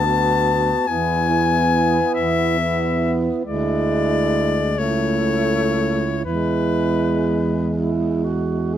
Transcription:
0.00 0.73 D2 medium
0.00 0.89 A5 medium
0.05 0.86 B3 soft
0.05 0.87 F#4 soft
0.87 2.00 E2 medium
0.87 1.28 B3 soft
0.87 1.28 E4 soft
0.87 2.14 G#5 medium
1.29 2.56 B3 soft
1.29 2.56 E4 soft
2.14 3.29 E2 soft
2.14 3.13 E5 medium
2.58 3.43 B3 soft
2.58 3.43 E4 soft
3.43 4.80 D2 soft
3.43 4.81 G#3 soft
3.43 4.63 E4 soft
3.43 4.80 D5 medium
4.78 6.25 C#2 soft
4.78 6.09 A3 soft
4.78 6.23 E4 soft
4.78 6.24 C#5 medium
6.25 8.78 E2 soft
6.25 8.78 G#3 soft
6.25 7.63 E4 soft
6.25 7.72 B4 medium
7.77 8.26 E4 soft
8.24 8.76 F#4 soft
8.74 8.78 G#4 soft

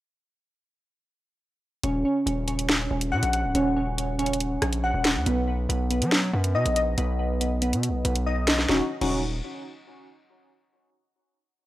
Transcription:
1.83 2.04 D#1 loud
1.83 2.04 C#4 medium
1.83 closed hi-hat medium
2.05 2.25 C#4 medium
2.26 2.88 D#1 loud
2.26 2.46 C#4 medium
2.26 closed hi-hat medium
2.48 2.90 C#4 medium
2.48 closed hi-hat medium
2.59 closed hi-hat medium
2.69 snare loud
2.91 3.14 D#1 loud
2.91 3.54 C#4 medium
3.01 closed hi-hat medium
3.12 3.22 A#2 loud
3.12 3.32 F#5 loud
3.23 3.46 A#1 loud
3.23 closed hi-hat medium
3.33 4.62 F#5 medium
3.33 closed hi-hat medium
3.44 3.54 C#1 loud
3.55 4.58 D#1 loud
3.55 3.75 C#4 medium
3.55 closed hi-hat medium
3.77 3.97 C#4 medium
3.98 4.18 C#4 medium
3.98 closed hi-hat medium
4.19 4.61 C#4 loud
4.19 closed hi-hat soft
4.26 closed hi-hat medium
4.33 closed hi-hat medium
4.40 closed hi-hat medium
4.62 4.93 A#1 loud
4.62 5.26 C#4 medium
4.62 cross-stick loud
4.62 closed hi-hat medium
4.73 closed hi-hat medium
4.84 5.04 F#5 loud
4.94 5.17 D#1 loud
5.05 5.26 F#5 medium
5.05 snare loud
5.05 closed hi-hat medium
5.16 5.26 D#2 loud
5.26 5.67 B1 loud
5.26 5.46 B3 medium
5.26 closed hi-hat medium
5.48 5.68 B3 medium
5.69 6.03 B1 loud
5.69 5.89 B3 medium
5.69 closed hi-hat medium
5.90 6.32 B3 medium
5.90 closed hi-hat medium
6.01 6.32 F#3 loud
6.01 closed hi-hat medium
6.12 snare loud
6.33 6.56 F#2 loud
6.33 6.96 B3 medium
6.44 closed hi-hat medium
6.55 6.65 B2 loud
6.55 6.75 D#5 loud
6.66 6.96 A#1 loud
6.66 closed hi-hat medium
6.76 8.05 D#5 medium
6.76 closed hi-hat medium
6.98 7.74 B1 loud
6.98 7.18 B3 medium
6.98 closed hi-hat medium
7.19 7.39 B3 medium
7.41 7.61 B3 medium
7.41 closed hi-hat loud
7.62 8.04 B3 medium
7.62 closed hi-hat medium
7.73 7.90 B2 loud
7.73 closed hi-hat medium
7.83 closed hi-hat medium
7.89 8.04 B1 loud
8.05 8.67 B1 loud
8.05 8.69 B3 medium
8.05 closed hi-hat medium
8.16 closed hi-hat medium
8.26 8.46 D#5 loud
8.48 8.69 D#5 medium
8.48 snare loud
8.48 closed hi-hat medium
8.59 snare medium
8.69 8.81 D#1 loud
8.69 8.81 C#4 medium
8.69 8.81 D#4 medium
8.69 8.81 F#4 medium
8.69 snare medium
9.01 9.41 D#1 loud
9.01 9.21 C#4 medium
9.01 9.21 D#4 medium
9.01 9.21 F#4 medium
9.01 crash medium

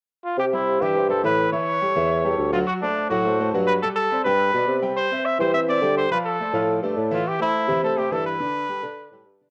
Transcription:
0.25 0.38 F4 medium
0.38 0.78 C3 medium
0.38 0.46 G4 medium
0.53 0.76 G3 medium
0.53 0.83 E4 medium
0.53 0.76 G4 medium
0.53 0.76 C5 medium
0.81 1.21 G2 medium
0.81 0.93 E3 medium
0.81 0.93 E4 medium
0.81 1.10 G4 medium
0.81 0.93 E5 medium
0.95 1.07 G3 medium
0.95 1.07 G4 medium
0.95 1.07 C5 medium
1.09 1.21 G3 medium
1.09 1.21 G4 medium
1.09 1.23 A4 medium
1.09 1.21 C5 medium
1.24 1.49 A2 medium
1.24 1.47 E3 medium
1.24 1.47 E4 medium
1.24 1.51 B4 medium
1.24 1.48 E5 medium
1.52 1.76 E3 medium
1.52 1.76 E4 medium
1.52 2.49 C#5 loud
1.52 1.77 E5 medium
1.81 1.93 G3 medium
1.81 1.93 G4 medium
1.81 1.94 A4 medium
1.95 2.36 E2 loud
1.95 2.19 E3 medium
1.95 2.19 E4 medium
1.95 2.19 E5 medium
2.24 2.48 G3 medium
2.24 2.48 G4 medium
2.24 2.48 A4 medium
2.38 2.64 D2 medium
2.53 2.76 F#3 medium
2.53 2.59 F4 medium
2.53 2.77 F#4 medium
2.53 2.77 F#5 medium
2.67 2.73 F#4 medium
2.82 3.05 A3 medium
2.82 3.08 D4 medium
2.82 3.05 A4 medium
2.82 3.05 C5 medium
3.10 3.50 A2 medium
3.10 3.22 F#3 medium
3.10 3.50 F#4 medium
3.10 3.22 F#4 medium
3.10 3.22 F#5 medium
3.25 3.36 A3 medium
3.25 3.37 A4 medium
3.25 3.37 C5 medium
3.39 3.51 A3 medium
3.39 3.51 A4 medium
3.39 3.51 C5 medium
3.53 3.79 G2 medium
3.53 3.77 F#3 medium
3.53 3.77 F#4 medium
3.53 3.78 F#5 medium
3.67 3.73 B4 medium
3.82 4.06 G3 medium
3.82 4.06 G4 medium
3.82 3.88 A4 medium
3.82 4.06 G5 medium
3.95 4.22 A4 loud
4.12 4.23 C4 medium
4.12 4.23 C5 medium
4.12 4.23 D5 medium
4.24 4.52 G2 medium
4.24 4.49 G3 medium
4.24 4.49 G4 medium
4.24 4.78 B4 loud
4.24 4.49 G5 medium
4.54 4.67 B2 medium
4.54 4.78 B3 medium
4.54 4.78 B4 medium
4.54 4.78 D5 medium
4.67 4.93 C3 medium
4.82 5.06 G3 medium
4.82 5.06 G4 medium
4.82 5.06 G5 medium
4.97 5.27 C5 loud
5.11 5.35 C4 medium
5.11 5.35 C5 medium
5.11 5.35 E5 medium
5.25 5.40 E5 medium
5.39 5.79 E3 medium
5.39 5.52 G3 medium
5.39 5.52 G4 medium
5.39 5.53 C5 medium
5.39 5.52 G5 medium
5.54 5.66 C4 medium
5.54 5.66 C5 medium
5.54 5.60 E5 loud
5.54 5.66 E5 medium
5.68 5.80 C4 medium
5.68 5.80 C5 medium
5.68 5.95 D5 loud
5.68 5.80 E5 medium
5.82 6.07 D3 medium
5.82 6.06 G3 medium
5.82 6.06 G4 medium
5.82 6.06 G5 medium
5.98 6.11 C5 loud
6.11 6.35 F3 medium
6.11 6.35 F4 medium
6.11 6.18 B4 medium
6.11 6.35 F5 medium
6.26 6.79 A4 medium
6.39 6.51 A3 medium
6.39 6.52 A4 medium
6.39 6.52 D5 medium
6.53 6.80 A2 loud
6.53 6.77 F3 medium
6.53 6.78 F4 medium
6.53 6.78 F5 medium
6.83 6.96 G2 medium
6.83 7.06 A3 medium
6.83 7.06 A4 medium
6.83 7.07 D5 medium
6.97 7.22 A2 medium
7.11 7.35 E3 medium
7.11 7.35 E4 medium
7.11 7.29 F4 medium
7.11 7.35 E5 medium
7.28 7.41 G4 medium
7.39 7.63 A3 medium
7.39 7.81 E4 medium
7.39 7.63 A4 medium
7.39 7.63 C5 medium
7.68 8.08 C3 medium
7.68 7.80 E3 medium
7.68 7.81 E4 medium
7.68 7.81 E5 medium
7.82 7.94 A3 medium
7.82 7.94 A4 medium
7.82 7.99 A4 medium
7.82 7.95 C5 medium
7.97 8.09 A3 medium
7.97 8.14 G4 medium
7.97 8.09 A4 medium
7.97 8.09 C5 medium
8.11 8.37 G2 medium
8.11 8.35 E3 medium
8.11 8.35 E4 medium
8.11 8.26 A4 loud
8.11 8.35 E5 medium
8.26 9.37 B4 loud
8.39 8.63 D3 medium
8.39 8.64 D4 medium
8.39 8.64 D5 medium
8.68 8.80 G3 medium
8.68 8.81 G4 medium
8.68 8.81 A4 medium
8.83 9.10 D3 medium
8.83 9.07 D3 medium
8.83 9.07 D4 medium
8.83 9.07 D5 medium
9.12 9.25 A2 medium
9.12 9.36 G3 medium
9.12 9.36 G4 medium
9.12 9.36 A4 medium
9.26 9.50 G2 medium
9.41 9.50 D3 medium
9.41 9.50 D4 medium
9.41 9.50 D5 medium

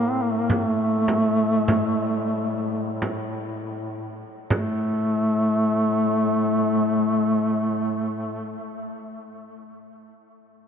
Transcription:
0.00 4.33 A2 soft
0.00 0.11 A#3 medium
0.10 0.24 C4 medium
0.22 0.33 A#3 medium
0.31 0.42 A3 medium
0.41 0.51 A#3 medium
0.50 0.63 A#3 medium
0.50 frame drum medium
0.63 3.02 A3 medium
1.08 frame drum medium
1.68 frame drum medium
3.02 frame drum medium
4.50 8.58 A2 soft
4.50 8.61 A3 medium
4.50 frame drum medium

